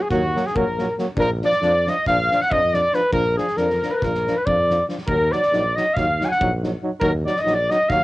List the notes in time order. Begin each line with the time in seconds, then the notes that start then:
0.02 G#4
0.10 D#2 F#3 A#3 F#4, kick, snare
0.35 F#3 A#3, snare
0.46 G#4, snare
0.55 A#1 F#3 A#3 A#4, kick
0.78 F#3 A#3, snare
0.98 F#3 A#3, snare
1.17 A#1 F3 D4 A#4, kick
1.42 F3 D4 D5, snare
1.52 snare
1.61 F2 F3 D4, snare
1.87 F3 D4 D#5, snare
2.06 A#1 F3 D4 F5, kick, snare
2.32 F3 D4, snare
2.42 F#5, snare
2.51 F2 F3 D4 D#5, kick
2.74 F3 D4 D5, snare
2.93 F3 D4 B4, snare
3.12 A#1 F3 D4 A#4, kick
3.37 F3 D4 G#4, snare
3.48 snare
3.57 F2 F3 D4 A#4, snare
3.70 snare
3.83 F3 D4, snare
3.91 A#4 B4
3.95 A#4 B4
4.01 A#1 F3 D4 A#4, kick, snare
4.15 snare
4.27 F3 D4, snare
4.36 B4
4.46 F2 F3 D4 D5, kick
4.69 F3 D4, snare
4.89 F3 D4, snare
4.98 snare
5.07 D#2 F#3 D#4 A#4, kick
5.32 F#3 D#4 D5, snare
5.43 snare
5.52 A#1 F#3 D#4, snare
5.76 F#3 D#4 D#5, snare
5.94 D#2 F#3 D#4 F5, kick, snare
6.20 F#3 D#4, snare
6.25 G#5
6.29 F#5 G#5, snare
6.40 A#1 F#3 D#4, kick
6.63 F#3 D#4, snare
6.83 F#3 D#4
7.00 D#2 F#3 D#4 A#4, kick
7.25 F#3 D#4 D5, snare
7.37 D#5, snare
7.41 A#1 F#3 D#4 D#5
7.47 snare
7.54 D5
7.70 F#3 D#4 D#5, snare
7.89 D#2 F#3 D#4 F5, kick, snare